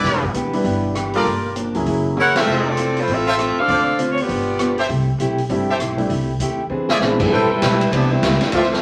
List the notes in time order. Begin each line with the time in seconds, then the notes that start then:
Already playing: E4 G4 B4 D5
0.04 E1 E3 B3 D4 G4, kick, snare, open hi-hat
0.23 kick
0.33 D2 E3 B3 D4 G4, closed hi-hat
0.53 G3 B3 D4 E4 B4, open hi-hat
0.64 G1 E3 B3 D4 G4, kick, open hi-hat
0.94 E3 B3 D4 G4, cross-stick, closed hi-hat
1.13 G3 A#3 D4 F4 G4 A4 A#4 D5, open hi-hat
1.24 G1 G2 F3 A#3 D4, kick, open hi-hat
1.54 G2 F3 A#3 D4, closed hi-hat
1.73 C#2 F#3 A#3 C#4 E4 G#4, open hi-hat
1.86 F#1 F#3 A#3 E4 G#4, kick, open hi-hat
2.17 F#3 A#3 E4 G#4 A#4 C#5 F#5, mid tom
2.35 F3 A3 C4 E4 F4 G4 A4 C5 E5, snare, ride
2.39 F4
2.46 F1 F3 A3 C4 E4
2.68 C4 F4 A4 D5
2.77 F3 A3 C4 E4, closed hi-hat
2.96 A3 E4 F4 C5, open hi-hat
3.07 A1 F3 A3 C4 E4, kick, open hi-hat
3.12 C4 F4 A4 E5
3.27 F4 A4 C5 E5
3.38 F3 A3 C4 E4, cross-stick, closed hi-hat
3.56 F5, muted upright bass stroke
3.60 D4 A4 C5
3.68 D2 D3 A3 C4 F4 A4 C5 D5, kick, open hi-hat
3.98 D3 A3 C4 F4, closed hi-hat
4.11 C#5
4.18 G4 D5, open hi-hat
4.22 B3 F4
4.28 G1 G2 F3 B3 D4, kick, open hi-hat
4.59 G2 F3 B3 D4, cross-stick, closed hi-hat
4.78 G4 A4 C5 E5, open hi-hat
4.88 C2 C3 A3 E4 G4, kick, open hi-hat
5.18 B1 C3 A3 E4 G4, closed hi-hat
5.38 open hi-hat
5.49 G1 C3 G3 A3 C4 D4 E4 G4, kick, open hi-hat
5.69 G4 A4 C5 E5
5.79 B1 C3 A3 E4 G4, cross-stick, closed hi-hat
5.97 G3 A3 C4 D4 E4, open hi-hat
6.09 C2 C3 A3 E4 G4, kick, open hi-hat
6.39 D#2 C3 A3 E4 G4, closed hi-hat
6.70 E2 E3 C4 D4 G#4
6.89 G#4 C5 D5 E5, snare
7.00 A#1 E3 G#3 B3 C4 D4 E4 G#4, snare
7.19 E3 G3 A3 B3 C4 D4 E4 G#4, kick, crash
7.30 A1 G3 A3 C4 E4 G4 A4 B4 C5 G5
7.49 G3 C4 E4 B4, muted upright bass stroke
7.61 B1 A3 C4 G4 B4, kick, snare, hi-hat pedal, ride
7.81 ride
7.91 C2 E3 G3 A3 B3 C4 D4 G4 B4, kick, ride
8.11 G3 B3 C4 E4
8.22 C#2 A3 C4 G4 B4, kick, snare, hi-hat pedal, ride
8.33 snare
8.41 F3 A3 C4 D4 E4, snare, ride
8.52 D2 D3 E3 F3 A3 C4 E4 F4 C5 D5 E5, kick, ride
8.63 snare
8.71 F3 A3 C4 E4, snare